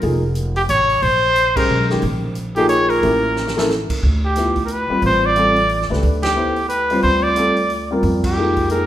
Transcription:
0.01 0.65 F1 medium
0.01 0.21 F3 medium
0.01 0.21 A#3 medium
0.01 0.21 D#4 medium
0.01 0.21 G#4 medium
0.01 open hi-hat soft
0.35 closed hi-hat medium
0.56 0.62 G4 medium
0.56 open hi-hat soft
0.69 1.00 A1 medium
0.69 1.04 C#5 loud
0.69 closed hi-hat medium
0.89 open hi-hat soft
1.02 1.65 A#1 medium
1.02 1.58 C5 loud
1.02 open hi-hat soft
1.36 closed hi-hat medium
1.56 1.87 G#3 medium
1.56 1.88 C#4 medium
1.56 1.88 G4 medium
1.56 1.90 A#4 medium
1.56 1.88 C5 medium
1.56 kick medium
1.56 crash medium
1.69 2.00 B1 medium
1.90 2.01 D#3 medium
1.90 2.02 G#3 medium
1.90 2.02 C#4 medium
1.90 2.02 G4 medium
1.90 snare soft
2.02 2.99 A#1 medium
2.02 open hi-hat soft
2.35 closed hi-hat medium
2.56 3.00 F3 medium
2.56 3.00 A#3 medium
2.56 3.01 D#4 medium
2.56 2.68 G4 medium
2.56 3.01 G#4 medium
2.56 open hi-hat soft
2.69 2.91 C#5 medium
2.69 closed hi-hat medium
2.90 3.69 A#4 medium
2.90 open hi-hat soft
3.02 3.86 A1 medium
3.02 3.52 A#3 medium
3.02 3.53 C#4 medium
3.02 3.53 E4 medium
3.02 3.53 G4 medium
3.02 open hi-hat soft
3.36 snare soft
3.47 snare medium
3.57 3.68 A#3 medium
3.57 3.68 C#4 medium
3.57 3.69 E4 medium
3.57 3.69 A4 medium
3.57 snare medium
3.69 snare medium
3.90 muted upright bass stroke soft
3.90 kick medium
3.90 crash medium
4.03 4.86 D2 medium
4.25 4.62 G4 medium
4.35 4.55 F3 medium
4.35 4.55 B3 soft
4.35 4.55 E4 soft
4.35 4.55 G4 medium
4.35 snare soft
4.35 closed hi-hat medium
4.56 kick medium
4.56 open hi-hat soft
4.65 4.74 A#4 medium
4.65 closed hi-hat soft
4.72 5.04 B4 medium
4.90 5.34 G3 medium
4.90 5.34 C4 medium
4.90 5.34 F4 medium
4.90 5.34 B4 medium
4.90 muted upright bass stroke soft
5.02 5.86 A1 medium
5.02 5.27 C5 loud
5.02 open hi-hat soft
5.26 5.91 D5 loud
5.36 5.55 G3 medium
5.36 5.55 C4 medium
5.36 5.55 F4 medium
5.36 5.56 A4 medium
5.36 closed hi-hat soft
5.56 open hi-hat soft
5.69 open hi-hat soft
5.81 snare soft
5.90 6.02 C#2 medium
5.90 6.34 A3 medium
5.90 6.34 D4 medium
5.90 6.34 G4 medium
5.90 6.34 B4 medium
5.90 snare soft
6.03 6.99 D2 medium
6.03 open hi-hat soft
6.23 6.66 G4 medium
6.23 snare medium
6.23 ride medium
6.36 6.55 B3 medium
6.36 6.55 E4 medium
6.36 6.55 A4 medium
6.36 6.55 C5 medium
6.56 open hi-hat soft
6.69 7.00 B4 medium
6.69 closed hi-hat medium
6.90 7.34 G3 medium
6.90 7.35 C4 medium
6.90 7.35 F4 medium
6.90 7.35 C5 medium
6.90 open hi-hat soft
7.02 7.99 D2 medium
7.02 7.24 C5 loud
7.02 open hi-hat soft
7.23 7.90 D5 medium
7.36 7.55 G3 medium
7.36 7.55 C4 medium
7.36 7.55 F4 medium
7.36 7.56 A4 medium
7.36 closed hi-hat medium
7.56 open hi-hat soft
7.70 open hi-hat soft
7.91 8.34 G3 medium
7.91 8.34 C4 medium
7.91 8.35 F4 medium
7.91 8.35 A#4 medium
8.03 8.86 F2 medium
8.03 open hi-hat soft
8.24 8.67 G4 medium
8.24 kick medium
8.24 crash medium
8.37 8.69 F3 medium
8.37 8.70 G#3 medium
8.37 8.69 A#3 medium
8.37 8.69 D#4 medium
8.56 kick medium
8.56 open hi-hat soft
8.70 8.86 F3 medium
8.70 8.86 A#3 soft
8.70 8.86 D#4 soft
8.70 8.86 G#4 medium
8.70 8.86 A#4 medium
8.70 closed hi-hat soft

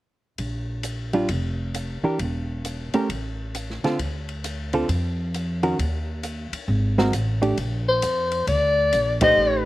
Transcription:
0.38 1.25 A#1 medium
0.38 kick soft
0.38 ride soft
0.83 hi-hat pedal medium
0.83 ride soft
1.13 1.27 G3 medium
1.13 1.28 D4 soft
1.13 1.28 F4 medium
1.13 ride soft
1.29 1.99 F1 medium
1.29 kick soft
1.29 ride medium
1.74 hi-hat pedal soft
1.74 ride soft
2.02 2.18 E3 soft
2.02 2.18 D4 soft
2.02 2.18 G4 soft
2.02 2.18 A#4 soft
2.02 muted upright bass stroke soft
2.19 2.89 E1 medium
2.19 kick soft
2.19 ride soft
2.65 hi-hat pedal medium
2.65 ride soft
2.93 3.08 A3 medium
2.93 3.08 C#4 medium
2.93 3.08 G4 medium
2.93 3.08 A#4 medium
2.93 muted upright bass stroke soft
2.93 ride soft
3.09 3.79 A1 medium
3.09 kick soft
3.09 ride soft
3.55 hi-hat pedal medium
3.55 ride medium
3.70 snare soft
3.83 3.98 D3 medium
3.83 3.98 C4 medium
3.83 3.98 F4 medium
3.83 3.98 A4 medium
3.83 muted upright bass stroke soft
3.83 snare soft
3.83 ride soft
3.99 4.85 D2 medium
3.99 kick soft
3.99 ride soft
4.29 ride soft
4.44 hi-hat pedal soft
4.44 ride medium
4.73 4.87 D3 medium
4.73 4.87 C4 medium
4.73 4.88 F4 medium
4.73 4.88 A4 medium
4.73 ride soft
4.89 5.75 F2 medium
4.89 kick soft
4.89 ride medium
5.34 hi-hat pedal soft
5.34 ride soft
5.63 5.77 D#3 soft
5.63 5.77 C#4 soft
5.63 5.77 F#4 soft
5.63 5.77 A#4 soft
5.63 ride soft
5.79 6.49 D#2 medium
5.79 kick soft
5.79 ride medium
6.23 hi-hat pedal medium
6.23 ride medium
6.52 muted upright bass stroke soft
6.52 ride medium
6.68 7.10 G#1 medium
6.68 kick soft
6.98 7.12 G#3 medium
6.98 7.12 C4 medium
6.98 7.12 F#4 medium
6.98 7.12 A#4 medium
6.98 snare medium
7.12 7.54 A1 medium
7.12 hi-hat pedal medium
7.12 ride medium
7.42 7.56 A3 soft
7.42 7.56 D4 medium
7.42 7.57 G4 medium
7.42 ride soft
7.58 8.00 A#1 medium
7.58 kick soft
7.58 ride medium
7.89 8.45 C5 medium
8.02 8.45 F2 medium
8.02 hi-hat pedal medium
8.02 ride medium
8.32 ride soft
8.47 8.89 D2 medium
8.47 9.18 D5 medium
8.47 kick soft
8.47 ride medium
8.93 9.35 A#1 medium
8.93 hi-hat pedal soft
8.93 ride medium
9.21 9.65 A3 soft
9.21 9.65 D#4 medium
9.21 9.65 G4 medium
9.21 9.65 C5 medium
9.21 9.64 D#5 loud
9.21 kick medium
9.21 ride medium
9.37 9.65 A1 medium

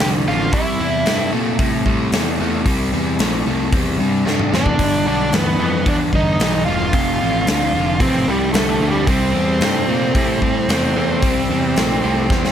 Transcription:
0.00 0.26 C2 medium
0.00 0.24 F2 medium
0.00 0.24 D3 medium
0.00 0.07 G4 medium
0.00 snare loud
0.26 0.53 A1 medium
0.26 0.50 F2 medium
0.26 0.51 D3 medium
0.26 0.53 F4 medium
0.53 0.79 C2 loud
0.53 0.77 C3 medium
0.53 0.77 G3 medium
0.53 1.29 E4 medium
0.53 kick loud
0.53 open hi-hat medium
0.79 1.05 E2 medium
0.79 1.03 C3 medium
0.79 1.04 G3 medium
1.05 1.32 G2 medium
1.05 1.30 C3 medium
1.05 1.30 A3 medium
1.05 snare loud
1.05 open hi-hat soft
1.32 1.59 A#2 medium
1.32 1.56 C3 medium
1.32 1.57 A3 medium
1.59 2.11 A2 medium
1.59 1.83 C3 medium
1.59 1.84 G3 loud
1.59 kick loud
1.59 open hi-hat medium
1.86 2.10 C3 medium
1.86 2.10 G3 medium
1.86 kick medium
2.12 2.38 E2 medium
2.12 2.37 C3 medium
2.12 2.37 A3 medium
2.12 snare loud
2.12 open hi-hat medium
2.40 2.65 E2 medium
2.40 2.64 C3 medium
2.40 2.64 A3 medium
2.66 2.92 C2 medium
2.66 2.90 C3 medium
2.66 2.90 G3 loud
2.66 kick loud
2.66 open hi-hat medium
2.92 3.18 E2 medium
2.92 3.17 C3 medium
2.92 3.17 G3 medium
3.19 3.45 A#1 medium
3.19 3.43 C3 medium
3.19 3.44 A3 loud
3.19 snare loud
3.19 open hi-hat medium
3.46 3.71 C2 medium
3.46 3.70 C3 medium
3.46 3.70 A3 medium
3.73 3.98 E2 medium
3.73 3.97 C3 medium
3.73 3.97 G3 medium
3.73 kick loud
3.73 open hi-hat medium
3.99 4.25 G2 medium
3.99 4.23 C3 medium
3.99 4.24 G3 medium
4.25 4.52 G2 medium
4.25 4.49 C3 medium
4.25 4.50 A3 medium
4.25 snare medium
4.39 mid tom medium
4.52 4.81 E2 medium
4.52 4.76 C3 medium
4.52 4.76 A3 medium
4.52 5.07 D4 loud
4.52 snare medium
4.66 kick medium
4.79 5.05 G1 medium
4.79 5.03 G2 medium
4.79 5.03 D3 loud
4.79 kick medium
4.79 open hi-hat medium
5.06 5.32 B1 medium
5.06 5.30 G2 medium
5.06 5.30 D3 medium
5.06 5.34 D4 loud
5.32 5.59 D2 medium
5.32 5.56 G2 medium
5.32 5.57 E3 medium
5.32 5.89 B3 medium
5.32 snare loud
5.32 open hi-hat medium
5.59 5.85 F2 medium
5.59 5.83 G2 medium
5.59 5.83 E3 medium
5.86 6.38 E2 medium
5.86 6.10 G2 medium
5.86 6.10 D3 medium
5.86 5.95 D4 loud
5.86 kick loud
5.86 open hi-hat medium
6.13 6.37 G2 medium
6.13 6.38 D3 medium
6.13 6.65 D#4 loud
6.13 kick medium
6.40 6.65 B1 medium
6.40 6.64 G2 medium
6.40 6.64 E3 medium
6.40 snare loud
6.40 open hi-hat medium
6.65 6.93 E1 medium
6.65 6.91 G2 medium
6.65 6.91 E3 medium
6.65 8.01 F4 loud
6.93 7.19 F1 medium
6.93 7.17 F2 medium
6.93 7.18 C3 medium
6.93 kick loud
6.93 open hi-hat medium
7.20 7.46 A1 medium
7.20 7.44 F2 medium
7.20 7.44 C3 medium
7.47 7.73 D2 medium
7.47 7.71 F2 medium
7.47 7.71 D3 medium
7.47 snare loud
7.47 open hi-hat medium
7.73 7.99 F1 medium
7.73 7.98 F2 medium
7.73 7.98 D3 medium
8.00 8.26 A1 medium
8.00 8.25 F2 medium
8.00 8.25 C3 medium
8.00 8.29 C4 loud
8.00 kick loud
8.00 open hi-hat medium
8.27 8.52 C2 medium
8.27 8.52 F2 medium
8.27 8.52 C3 medium
8.27 8.52 G3 medium
8.53 8.79 C2 medium
8.53 8.79 F2 medium
8.53 8.79 D3 medium
8.53 8.90 A3 medium
8.53 snare loud
8.53 open hi-hat medium
8.80 9.06 D2 medium
8.80 9.05 F2 medium
8.80 9.06 D3 medium
8.90 9.08 G3 medium
9.07 9.33 C2 medium
9.07 9.32 C3 medium
9.07 9.32 G3 loud
9.07 12.52 C4 medium
9.07 kick loud
9.07 open hi-hat medium
9.33 9.60 E2 medium
9.33 9.59 C3 medium
9.33 9.59 G3 medium
9.60 9.87 G2 medium
9.60 9.85 C3 medium
9.60 9.85 A3 medium
9.60 snare loud
9.60 open hi-hat medium
9.88 10.14 A#2 medium
9.88 10.12 C3 medium
9.88 10.12 A3 medium
10.15 10.67 A2 medium
10.15 10.39 C3 medium
10.15 10.39 G3 medium
10.15 kick loud
10.15 open hi-hat medium
10.41 10.66 C3 medium
10.41 10.66 G3 medium
10.41 kick medium
10.69 10.94 E2 medium
10.69 10.93 C3 medium
10.69 10.93 A3 medium
10.69 snare loud
10.69 open hi-hat medium
10.96 11.22 E2 medium
10.96 11.20 C3 medium
10.96 11.20 A3 medium
11.22 11.48 C2 medium
11.22 11.47 C3 medium
11.22 11.47 G3 loud
11.22 kick loud
11.22 open hi-hat medium
11.49 11.75 E2 medium
11.49 11.74 C3 medium
11.49 11.74 G3 medium
11.76 12.02 A#1 medium
11.76 12.01 C3 medium
11.76 12.01 A3 medium
11.76 snare loud
11.76 open hi-hat medium
12.03 12.29 C2 medium
12.03 12.27 C3 medium
12.03 12.27 A3 medium
12.30 12.52 E2 medium
12.30 12.52 C3 medium
12.30 12.52 G3 medium
12.30 kick loud
12.30 snare medium
12.45 snare medium

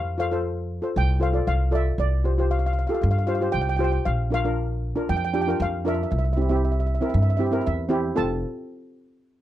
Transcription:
0.00 0.79 F2 medium
0.00 0.19 F5 loud
0.18 0.26 F4 medium
0.18 0.27 A4 medium
0.18 0.27 C5 medium
0.18 0.99 F5 medium
0.31 0.62 F4 medium
0.31 0.63 A4 medium
0.31 0.63 C5 medium
0.82 1.06 F4 medium
0.82 1.06 A4 medium
0.82 1.07 C5 medium
0.96 1.39 C2 medium
0.96 1.23 G5 loud
1.20 1.29 F4 medium
1.20 1.29 A4 medium
1.20 1.29 C5 medium
1.20 1.47 F5 medium
1.33 1.57 F4 medium
1.33 1.58 A4 medium
1.33 1.58 D5 medium
1.47 1.90 C2 medium
1.47 1.72 F5 medium
1.71 1.98 F4 medium
1.71 1.98 A4 medium
1.71 1.99 D5 medium
1.71 1.86 E5 medium
1.98 2.84 C2 medium
1.98 2.47 D5 medium
2.24 2.33 F4 medium
2.24 2.33 G4 medium
2.24 2.33 C5 medium
2.38 2.69 F4 medium
2.38 2.70 G4 medium
2.38 2.70 C5 medium
2.51 2.58 F5 medium
2.59 2.65 F5 medium
2.66 2.72 F5 medium
2.73 2.78 F5 medium
2.79 2.86 F5 medium
2.87 3.13 F4 medium
2.87 3.13 G4 medium
2.87 3.13 A4 medium
2.87 2.93 F5 medium
2.94 3.00 F5 medium
3.02 3.46 G2 loud
3.02 3.10 F5 medium
3.11 3.17 F5 medium
3.18 3.26 F5 medium
3.27 3.36 F4 medium
3.27 3.36 G4 medium
3.27 3.36 C5 medium
3.27 3.34 F5 medium
3.35 3.43 F5 medium
3.41 3.65 F4 medium
3.41 3.65 G4 medium
3.41 3.65 C5 medium
3.52 3.97 C2 medium
3.52 3.60 G5 loud
3.62 3.68 G5 medium
3.69 3.75 G5 medium
3.77 4.05 F4 medium
3.77 4.05 G4 medium
3.77 4.06 C5 medium
3.77 3.83 G5 medium
3.84 3.91 G5 medium
3.92 4.00 G5 medium
4.05 4.92 A#1 medium
4.05 4.17 F5 medium
4.30 4.39 D4 medium
4.30 4.39 F4 medium
4.30 4.40 A#4 medium
4.30 5.06 F5 loud
4.44 4.75 D4 medium
4.44 4.76 F4 medium
4.44 4.76 A#4 medium
4.96 5.19 D4 medium
4.96 5.19 F4 medium
4.96 5.20 A#4 medium
5.09 5.52 F2 loud
5.09 5.15 G5 medium
5.17 5.23 G5 medium
5.25 5.32 G5 medium
5.34 5.42 D4 medium
5.34 5.43 F4 medium
5.34 5.43 G4 medium
5.34 5.40 G5 medium
5.41 5.48 G5 medium
5.47 5.71 D4 medium
5.47 5.71 F4 medium
5.47 5.71 A#4 medium
5.47 5.56 G5 medium
5.60 6.03 F2 loud
5.60 5.73 F5 medium
5.85 6.11 D4 medium
5.85 6.12 F4 medium
5.85 6.12 A#4 medium
5.85 5.93 E5 medium
5.94 6.01 E5 medium
6.03 6.09 E5 medium
6.11 6.97 C2 loud
6.11 6.17 E5 medium
6.19 6.23 E5 medium
6.25 6.31 E5 soft
6.33 6.45 C4 medium
6.33 6.39 E5 medium
6.37 6.45 E4 medium
6.37 6.46 G4 medium
6.42 6.48 E5 soft
6.49 6.81 C4 medium
6.49 6.81 E4 medium
6.49 6.82 G4 medium
6.49 6.55 E5 medium
6.56 6.62 E5 soft
6.65 6.70 E5 medium
6.72 6.78 E5 soft
6.80 6.85 E5 medium
6.87 6.92 E5 soft
6.95 7.01 E5 medium
7.01 7.25 C4 medium
7.01 7.25 E4 medium
7.01 7.26 A#4 medium
7.01 7.08 E5 medium
7.10 7.15 E5 medium
7.14 7.57 G2 loud
7.14 7.21 E5 soft
7.22 7.29 E5 medium
7.30 7.36 E5 medium
7.37 7.48 C4 medium
7.37 7.48 E4 medium
7.37 7.48 G4 medium
7.37 7.44 E5 medium
7.46 7.52 E5 soft
7.51 7.76 C4 medium
7.51 7.76 E4 medium
7.51 7.76 A#4 medium
7.51 7.59 E5 medium
7.61 7.65 E5 medium
7.66 8.09 E2 loud
7.66 7.74 E5 medium
7.89 8.14 C4 medium
7.89 8.17 E4 medium
7.89 8.17 G4 loud
8.16 8.42 F1 medium
8.16 8.41 C4 medium
8.16 8.41 F4 medium
8.16 8.41 A4 medium
8.16 8.41 A5 medium

